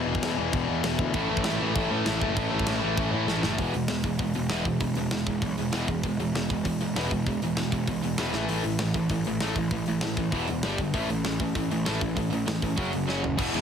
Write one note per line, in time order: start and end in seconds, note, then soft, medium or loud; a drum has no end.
0.00 0.37 E2 medium
0.00 0.37 B2 loud
0.00 0.36 E3 loud
0.07 0.19 E1 medium
0.07 0.22 E2 medium
0.07 0.22 B2 medium
0.07 0.24 E3 medium
0.15 kick medium
0.22 0.35 E1 medium
0.22 0.37 E2 medium
0.22 0.36 B2 loud
0.22 0.36 E3 loud
0.22 snare loud
0.22 crash medium
0.37 0.50 E1 medium
0.37 0.51 E2 medium
0.37 0.52 B2 medium
0.37 0.53 E3 loud
0.52 0.66 E1 medium
0.52 0.68 E2 loud
0.52 0.67 B2 loud
0.52 0.68 E3 loud
0.52 kick loud
0.52 crash medium
0.68 0.81 E2 medium
0.68 0.83 E2 medium
0.68 0.84 B2 medium
0.68 0.84 E3 medium
0.84 0.96 E1 medium
0.84 0.99 E2 medium
0.84 0.98 B2 loud
0.84 0.98 E3 loud
0.84 snare loud
0.84 crash medium
0.99 1.11 D2 medium
0.99 1.14 E2 medium
0.99 1.13 B2 medium
0.99 1.14 E3 loud
0.99 kick medium
1.14 1.27 A1 loud
1.14 1.31 A2 loud
1.14 1.29 A2 loud
1.14 1.29 E3 loud
1.14 1.30 E3 loud
1.14 1.29 A3 loud
1.14 1.30 A3 loud
1.14 1.29 C#4 loud
1.14 1.29 E4 loud
1.14 kick loud
1.14 crash medium
1.29 1.43 A1 medium
1.29 1.45 A2 medium
1.29 1.44 A2 medium
1.29 1.45 E3 medium
1.29 1.44 E3 medium
1.29 1.45 A3 medium
1.29 1.45 A3 loud
1.29 1.46 C#4 loud
1.29 1.46 E4 loud
1.37 kick medium
1.44 1.58 A1 medium
1.44 1.61 A2 loud
1.44 1.60 A2 loud
1.44 1.61 E3 loud
1.44 1.60 A3 loud
1.44 1.59 C#4 loud
1.44 1.60 E4 loud
1.44 snare loud
1.44 crash medium
1.60 1.73 A1 medium
1.60 1.74 A2 medium
1.60 1.75 E3 medium
1.60 1.76 E3 medium
1.60 1.74 A3 loud
1.60 1.75 A3 medium
1.60 1.76 C#4 medium
1.60 1.77 E4 medium
1.75 1.88 A1 medium
1.75 1.90 A2 medium
1.75 1.92 A2 loud
1.75 1.91 E3 loud
1.75 1.92 E3 loud
1.75 1.89 A3 loud
1.75 1.91 A3 loud
1.75 1.90 C#4 loud
1.75 1.90 E4 loud
1.75 kick loud
1.75 crash medium
1.90 2.03 A2 medium
1.90 2.04 A2 medium
1.90 2.05 A2 medium
1.90 2.05 E3 medium
1.90 2.06 E3 medium
1.90 2.05 A3 medium
1.90 2.06 A3 medium
1.90 2.06 C#4 medium
1.90 2.08 E4 medium
2.05 2.18 A1 medium
2.05 2.20 A2 loud
2.05 2.22 A2 loud
2.05 2.21 E3 loud
2.05 2.23 E3 medium
2.05 2.19 A3 loud
2.05 2.22 A3 medium
2.05 2.21 C#4 loud
2.05 2.21 E4 loud
2.05 snare loud
2.05 crash medium
2.20 2.34 F#1 loud
2.20 2.33 A2 medium
2.20 2.36 A2 medium
2.20 2.33 E3 medium
2.20 2.37 E3 medium
2.20 2.34 A3 loud
2.20 2.37 A3 medium
2.20 2.37 C#4 medium
2.20 2.38 E4 loud
2.20 kick medium
2.35 2.49 A1 loud
2.35 2.50 A2 loud
2.35 2.54 A2 loud
2.35 2.50 E3 loud
2.35 2.53 E3 loud
2.35 2.49 A3 loud
2.35 2.53 A3 loud
2.35 kick loud
2.35 crash medium
2.39 2.52 C#4 loud
2.39 2.52 E4 loud
2.50 2.64 A1 medium
2.50 2.64 A2 medium
2.50 2.65 E3 medium
2.50 2.66 E3 medium
2.50 2.65 A3 medium
2.50 2.67 A3 medium
2.50 2.67 C#4 loud
2.50 2.68 E4 loud
2.55 2.66 A2 medium
2.59 kick medium
2.66 2.79 A1 medium
2.66 2.80 A2 medium
2.66 2.84 A2 loud
2.66 2.79 E3 loud
2.66 2.83 E3 loud
2.66 2.79 A3 loud
2.66 2.83 A3 loud
2.66 2.82 C#4 loud
2.66 2.82 E4 loud
2.66 snare loud
2.66 crash medium
2.80 2.95 A1 medium
2.80 2.95 A2 medium
2.80 2.95 E3 medium
2.80 2.95 A3 medium
2.80 2.98 A3 medium
2.80 2.98 C#4 medium
2.80 2.99 E4 medium
2.84 2.97 A2 medium
2.84 2.98 E3 medium
2.96 3.10 A1 medium
2.96 3.11 A2 medium
2.96 3.15 A2 medium
2.96 3.10 E3 loud
2.96 3.14 E3 medium
2.96 3.10 A3 loud
2.96 3.14 A3 medium
2.96 3.13 C#4 loud
2.96 kick loud
2.96 crash medium
3.00 3.13 E4 loud
3.11 3.25 A2 medium
3.11 3.26 A2 medium
3.11 3.26 E3 medium
3.11 3.26 A3 medium
3.11 3.29 A3 medium
3.11 3.29 C#4 medium
3.11 3.29 E4 medium
3.16 3.27 A2 medium
3.16 3.28 E3 medium
3.27 3.40 A1 medium
3.27 3.42 A2 loud
3.27 3.45 A2 medium
3.27 3.42 E3 loud
3.27 3.44 E3 medium
3.27 3.41 A3 loud
3.27 3.44 A3 medium
3.27 3.43 C#4 loud
3.27 3.43 E4 loud
3.27 snare medium
3.42 3.56 F#1 medium
3.42 3.58 A2 medium
3.42 3.59 A2 medium
3.42 3.57 E3 medium
3.42 3.58 E3 medium
3.42 3.57 A3 medium
3.42 3.58 A3 medium
3.42 3.58 C#4 medium
3.42 3.58 E4 medium
3.42 snare medium
3.58 3.71 E1 medium
3.58 3.73 E2 medium
3.58 3.73 B2 medium
3.58 3.73 E3 medium
3.58 3.74 G#3 medium
3.58 3.74 B3 medium
3.58 kick medium
3.58 open hi-hat medium
3.74 3.87 E1 medium
3.74 3.87 E2 medium
3.74 3.87 B2 medium
3.74 3.88 E3 medium
3.74 3.88 G#3 medium
3.74 open hi-hat medium
3.88 4.02 E1 medium
3.88 4.02 E2 medium
3.88 4.03 B2 medium
3.88 4.03 E3 medium
3.88 4.03 G#3 medium
3.88 snare loud
3.88 open hi-hat medium
4.03 4.17 E1 medium
4.03 4.18 E2 medium
4.03 4.18 B2 medium
4.03 4.18 E3 medium
4.03 4.18 G#3 medium
4.03 kick medium
4.03 open hi-hat medium
4.19 4.32 E1 medium
4.19 4.33 E2 medium
4.19 4.34 B2 medium
4.19 4.33 E3 medium
4.19 4.33 G#3 medium
4.19 kick medium
4.19 open hi-hat medium
4.34 4.48 E1 medium
4.34 4.49 E2 medium
4.34 4.49 B2 medium
4.34 4.48 E3 medium
4.34 4.49 G#3 medium
4.34 open hi-hat medium
4.50 4.62 E1 medium
4.50 4.64 E2 medium
4.50 4.65 B2 loud
4.50 4.64 E3 medium
4.50 4.65 E3 medium
4.50 4.65 G#3 medium
4.50 4.65 B3 medium
4.50 snare loud
4.50 open hi-hat medium
4.65 4.78 E1 medium
4.65 4.79 E2 medium
4.65 4.80 B2 medium
4.65 4.79 E3 medium
4.65 4.80 G#3 medium
4.65 kick medium
4.65 open hi-hat medium
4.80 4.93 E1 medium
4.80 4.95 E2 medium
4.80 4.95 B2 medium
4.80 4.94 E3 medium
4.80 4.95 G#3 medium
4.80 kick medium
4.80 open hi-hat medium
4.95 5.08 E1 medium
4.95 5.11 E2 medium
4.95 5.11 B2 medium
4.95 5.10 E3 medium
4.95 5.11 G#3 medium
4.95 open hi-hat medium
5.11 5.23 E1 medium
5.11 5.26 E2 medium
5.11 5.26 B2 medium
5.11 5.25 E3 medium
5.11 5.25 G#3 medium
5.11 snare loud
5.11 open hi-hat medium
5.26 5.39 E1 medium
5.26 5.41 E2 medium
5.26 5.41 B2 medium
5.26 5.40 E3 medium
5.26 5.40 G#3 medium
5.26 kick medium
5.26 open hi-hat soft
5.42 5.55 B1 medium
5.42 5.56 E2 medium
5.42 5.57 B2 medium
5.42 5.56 E3 medium
5.42 5.56 G#3 medium
5.42 kick medium
5.42 open hi-hat medium
5.57 5.70 E1 medium
5.57 5.72 E2 medium
5.57 5.72 B2 medium
5.57 5.71 E3 medium
5.57 5.72 G#3 medium
5.57 open hi-hat medium
5.72 5.85 E1 medium
5.72 5.88 E2 medium
5.72 5.88 B2 loud
5.72 5.87 E3 medium
5.72 5.88 E3 medium
5.72 5.87 G#3 medium
5.72 5.87 B3 medium
5.72 snare loud
5.72 open hi-hat medium
5.88 6.01 E1 medium
5.88 6.03 E2 medium
5.88 6.03 B2 medium
5.88 6.02 E3 medium
5.88 6.02 G#3 medium
5.88 kick medium
5.88 open hi-hat medium
6.03 6.16 E1 medium
6.03 6.18 E2 medium
6.03 6.18 B2 medium
6.03 6.17 E3 medium
6.03 6.17 G#3 medium
6.03 kick medium
6.03 open hi-hat medium
6.19 6.31 E1 medium
6.19 6.33 E2 medium
6.19 6.33 B2 medium
6.19 6.33 E3 medium
6.19 6.33 G#3 medium
6.19 open hi-hat medium
6.33 6.46 E1 medium
6.33 6.49 E2 medium
6.33 6.49 B2 medium
6.33 6.48 E3 medium
6.33 6.49 G#3 medium
6.33 snare medium
6.33 open hi-hat medium
6.49 6.62 E1 medium
6.49 6.63 E2 medium
6.49 6.64 B2 medium
6.49 6.63 E3 medium
6.49 6.63 G#3 medium
6.49 kick medium
6.49 open hi-hat medium
6.65 6.78 E1 medium
6.65 6.78 E2 medium
6.65 6.79 B2 medium
6.65 6.79 E3 medium
6.65 6.79 G#3 medium
6.65 kick medium
6.65 open hi-hat medium
6.81 6.93 E1 medium
6.81 6.94 E2 medium
6.81 6.94 B2 medium
6.81 6.94 E3 medium
6.81 6.94 G#3 medium
6.81 open hi-hat medium
6.96 7.08 E1 medium
6.96 7.10 E2 medium
6.96 7.10 B2 loud
6.96 7.10 E3 medium
6.96 7.11 E3 medium
6.96 7.10 G#3 medium
6.96 7.11 B3 medium
6.96 snare loud
6.96 open hi-hat medium
7.11 7.24 E1 medium
7.11 7.25 E2 medium
7.11 7.25 B2 medium
7.11 7.25 E3 medium
7.11 7.25 G#3 medium
7.11 kick medium
7.11 open hi-hat medium
7.26 7.39 E1 medium
7.26 7.41 E2 medium
7.26 7.41 B2 medium
7.26 7.40 E3 medium
7.26 7.40 G#3 medium
7.26 kick medium
7.26 open hi-hat medium
7.42 7.54 E1 medium
7.42 7.56 E2 medium
7.42 7.56 B2 medium
7.42 7.55 E3 medium
7.42 7.56 G#3 medium
7.42 open hi-hat medium
7.57 7.70 E1 medium
7.57 7.72 E2 medium
7.57 7.72 B2 medium
7.57 7.70 E3 medium
7.57 7.71 G#3 medium
7.57 snare loud
7.57 open hi-hat medium
7.72 7.85 E1 medium
7.72 7.86 E2 medium
7.72 7.87 B2 medium
7.72 7.86 E3 medium
7.72 7.86 G#3 medium
7.72 kick medium
7.72 open hi-hat medium
7.87 8.00 B1 medium
7.87 8.02 E2 medium
7.87 8.02 B2 medium
7.87 8.01 E3 medium
7.87 8.01 G#3 medium
7.87 kick medium
7.87 open hi-hat medium
8.02 8.15 E1 medium
8.02 8.17 E2 medium
8.02 8.17 B2 medium
8.02 8.16 E3 medium
8.02 8.16 G#3 medium
8.02 open hi-hat medium
8.18 8.31 E1 medium
8.18 8.33 E2 medium
8.18 8.33 B2 medium
8.18 8.32 E3 medium
8.18 8.33 E3 medium
8.18 8.33 G#3 medium
8.18 8.33 B3 loud
8.18 snare loud
8.18 open hi-hat medium
8.33 8.46 A1 medium
8.33 8.48 A2 medium
8.33 8.48 E3 loud
8.33 8.48 E3 medium
8.33 8.48 A3 medium
8.33 8.49 A3 medium
8.33 snare medium
8.49 8.61 A1 medium
8.49 8.63 A2 medium
8.49 8.63 E3 medium
8.49 8.64 E3 medium
8.49 8.64 A3 medium
8.49 8.64 A3 loud
8.49 open hi-hat medium
8.64 8.76 A1 medium
8.64 8.78 A2 medium
8.64 8.79 A2 medium
8.64 8.78 E3 medium
8.64 8.79 E3 medium
8.64 open hi-hat medium
8.79 8.92 A1 medium
8.79 8.93 A2 medium
8.79 8.94 A2 medium
8.79 8.93 E3 medium
8.79 8.94 E3 medium
8.79 snare loud
8.79 open hi-hat medium
8.94 9.07 A1 medium
8.94 9.08 A2 medium
8.94 9.09 E3 medium
8.94 kick medium
8.94 open hi-hat medium
9.09 9.22 A1 medium
9.09 9.24 A2 medium
9.09 9.24 E3 medium
9.09 kick medium
9.09 open hi-hat medium
9.24 9.38 A1 medium
9.24 9.40 A2 medium
9.24 9.40 E3 medium
9.24 open hi-hat medium
9.40 9.53 A1 medium
9.40 9.55 A2 medium
9.40 9.56 A2 medium
9.40 9.56 E3 medium
9.40 9.56 A3 loud
9.40 snare medium
9.40 open hi-hat medium
9.56 9.69 A1 medium
9.56 9.70 A2 medium
9.56 9.71 A2 medium
9.56 9.70 E3 medium
9.56 9.71 E3 medium
9.56 kick medium
9.56 open hi-hat medium
9.71 9.83 A1 medium
9.71 9.86 A2 medium
9.71 9.86 E3 medium
9.71 kick medium
9.71 open hi-hat medium
9.86 9.99 A1 medium
9.86 10.01 A2 medium
9.86 10.01 E3 medium
9.86 open hi-hat medium
10.01 10.15 A1 medium
10.01 10.16 A2 medium
10.01 10.16 E3 medium
10.01 snare loud
10.01 open hi-hat medium
10.17 10.30 A1 medium
10.17 10.31 A2 medium
10.17 10.32 A2 medium
10.17 10.31 E3 medium
10.17 10.32 E3 medium
10.17 kick medium
10.17 open hi-hat medium
10.32 10.45 E1 medium
10.32 10.47 E2 medium
10.32 10.47 B2 loud
10.32 10.47 E3 loud
10.32 10.47 E3 medium
10.32 10.48 B3 medium
10.32 10.48 E4 medium
10.32 kick medium
10.32 open hi-hat medium
10.48 10.61 E1 medium
10.48 10.62 E2 medium
10.48 10.62 B2 medium
10.48 10.62 E3 medium
10.48 10.62 B3 medium
10.48 open hi-hat medium
10.63 10.76 G1 medium
10.63 10.78 G2 loud
10.63 10.78 D3 medium
10.63 10.78 G3 medium
10.63 10.78 G3 loud
10.63 10.78 D4 medium
10.63 10.79 G4 loud
10.63 snare loud
10.63 open hi-hat medium
10.78 10.91 G1 medium
10.78 10.92 G2 medium
10.78 10.93 D3 medium
10.78 10.93 G3 medium
10.78 10.93 D4 medium
10.78 kick medium
10.78 open hi-hat medium
10.94 11.06 A1 medium
10.94 11.08 A2 medium
10.94 11.08 E3 medium
10.94 11.08 A3 medium
10.94 11.09 C#4 medium
10.94 11.09 E4 medium
10.94 kick medium
10.94 open hi-hat medium
11.08 11.21 A1 medium
11.08 11.23 A2 medium
11.08 11.23 E3 medium
11.08 11.23 A3 medium
11.08 11.23 C#4 medium
11.08 open hi-hat medium
11.24 11.37 A1 medium
11.24 11.39 A2 medium
11.24 11.39 E3 medium
11.24 11.38 A3 medium
11.24 11.38 C#4 medium
11.24 snare loud
11.24 open hi-hat medium
11.40 11.53 A1 medium
11.40 11.54 A2 medium
11.40 11.54 E3 medium
11.40 11.54 A3 medium
11.40 11.54 C#4 medium
11.40 kick medium
11.40 open hi-hat medium
11.55 11.68 A1 medium
11.55 11.69 A2 medium
11.55 11.70 E3 medium
11.55 11.69 A3 medium
11.55 11.69 C#4 medium
11.55 kick medium
11.55 open hi-hat medium
11.71 11.83 A1 medium
11.71 11.85 A2 medium
11.71 11.85 E3 medium
11.71 11.84 A3 medium
11.71 11.84 C#4 medium
11.71 open hi-hat medium
11.85 11.99 A1 medium
11.85 12.00 A2 medium
11.85 12.01 E3 medium
11.85 11.99 A3 medium
11.85 12.01 A3 medium
11.85 12.00 C#4 medium
11.85 12.00 E4 loud
11.85 snare loud
11.85 open hi-hat medium
12.01 12.14 A1 medium
12.01 12.15 A2 medium
12.01 12.15 E3 medium
12.01 12.14 A3 medium
12.01 12.15 C#4 medium
12.01 kick medium
12.01 open hi-hat medium
12.16 12.29 A1 medium
12.16 12.31 A2 medium
12.16 12.31 E3 medium
12.16 12.29 A3 medium
12.16 12.30 C#4 medium
12.16 kick medium
12.16 open hi-hat medium
12.30 12.44 A1 medium
12.30 12.46 A2 medium
12.30 12.46 E3 medium
12.30 12.45 A3 medium
12.30 12.45 C#4 medium
12.30 open hi-hat medium
12.46 12.60 A1 medium
12.46 12.61 A2 medium
12.46 12.61 E3 medium
12.46 12.61 A3 medium
12.46 12.61 C#4 medium
12.46 snare loud
12.46 open hi-hat medium
12.62 12.75 A1 medium
12.62 12.76 A2 medium
12.62 12.77 E3 medium
12.62 12.76 A3 medium
12.62 12.76 C#4 medium
12.62 kick medium
12.62 open hi-hat medium
12.76 12.90 F#1 medium
12.76 12.91 F#2 medium
12.76 12.92 C#3 medium
12.76 12.91 F#3 medium
12.76 12.92 F#3 loud
12.76 12.92 C#4 medium
12.76 12.92 F#4 medium
12.76 kick medium
12.76 open hi-hat medium
12.92 13.06 F#1 medium
12.92 13.06 F#2 medium
12.92 13.06 C#3 medium
12.92 13.06 F#3 medium
12.92 13.07 C#4 medium
12.92 open hi-hat medium
13.07 13.21 F#1 medium
13.07 13.22 F#2 medium
13.07 13.22 C#3 loud
13.07 13.21 F#3 medium
13.07 13.23 F#3 medium
13.07 13.22 C#4 medium
13.07 13.23 F#4 medium
13.07 snare medium
13.23 13.36 F#1 medium
13.23 13.37 F#2 medium
13.23 13.37 C#3 medium
13.23 13.37 F#3 medium
13.23 13.37 C#4 medium
13.23 floor tom medium
13.37 13.48 E1 loud
13.37 13.53 E2 medium
13.37 13.53 B2 loud
13.37 13.54 E3 loud
13.37 13.53 E3 loud
13.37 13.53 G#3 loud
13.37 13.53 B3 loud
13.37 13.52 E4 loud
13.37 kick loud
13.37 crash loud
13.37 crash medium
13.53 13.61 E1 loud
13.53 13.61 E2 medium
13.53 13.61 B2 medium
13.53 13.61 E3 medium
13.53 13.61 G#3 medium
13.53 13.61 B3 loud
13.53 13.61 E4 loud
13.53 crash medium